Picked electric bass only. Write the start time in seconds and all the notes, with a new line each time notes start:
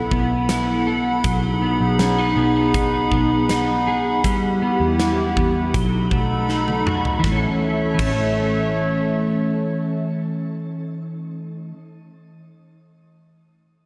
0.12 B1
1.25 B1
1.81 B1
2.36 B1
3.12 B1
4.24 E2
4.80 E2
5.37 E2
5.75 B1
6.12 B1
7.24 A1
7.99 A1